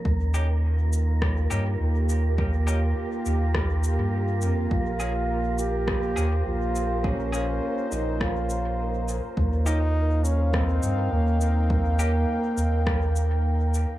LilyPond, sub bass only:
\new Staff \with { instrumentName = "Sub bass" } { \clef bass \time 4/4 \key ees \mixolydian \tempo 4 = 103 ees,2~ ees,8 g,8 ees,4~ | ees,4 r8 ees,4~ ees,16 g,8. f,8 | bes,,2~ bes,,8 ees,8 bes,,4~ | bes,,4 r8 bes,,2~ bes,,16 r16 |
ees,2~ ees,8 g,8 ees,4~ | ees,4 r8 ees,2~ ees,16 r16 | }